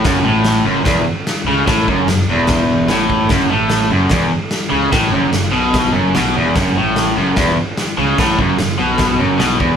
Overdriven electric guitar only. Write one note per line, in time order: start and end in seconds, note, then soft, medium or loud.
0.05 0.24 F#2 loud
0.24 0.64 A2 loud
0.65 0.84 F#2 loud
0.84 1.04 E2 loud
1.47 1.66 C#3 loud
1.67 1.86 A2 loud
1.88 2.07 F#2 loud
2.10 2.24 F#2 medium
2.30 2.89 E2 loud
2.89 3.28 A2 loud
3.31 3.50 F#2 loud
3.50 3.90 A2 loud
3.91 4.10 F#2 loud
4.12 4.31 E2 loud
4.70 4.91 C#3 loud
4.92 5.12 A2 loud
5.12 5.32 F#2 loud
5.33 5.49 F#2 medium
5.53 5.93 B2 loud
5.92 6.13 F#2 medium
6.15 6.34 B2 loud
6.37 6.55 E2 loud
6.57 6.76 F#2 loud
6.77 7.16 A2 loud
7.17 7.36 F#2 loud
7.37 7.57 E2 loud
7.98 8.18 C#3 loud
8.19 8.38 A2 loud
8.39 8.58 F#2 loud
8.59 8.75 F#2 medium
8.79 9.19 B2 loud
9.18 9.39 F#2 medium
9.38 9.59 B2 loud
9.58 9.77 E2 loud